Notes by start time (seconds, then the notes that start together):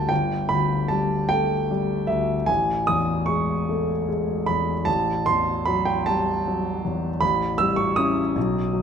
Already playing: D2 G3 A3 G5 A5 B5 C6
0.09 G1 G5
0.49 D2 B5
0.88 G3 A5
1.29 A3 G5
1.71 G3
2.07 D2 E5
2.46 A1 G#5
2.87 E2 D#6
3.26 G#3 C#6
3.69 A3
4.09 G#3
4.46 E2 B5
4.85 A1 A5
5.26 E2 C6
5.65 F#3 B5
5.85 G5
6.06 G3 A5
6.48 F#3
6.85 E2
7.21 A1 B5
7.58 G3 E6
7.76 C#6
7.96 C#4 E4 D#6
8.36 B1
8.73 F#3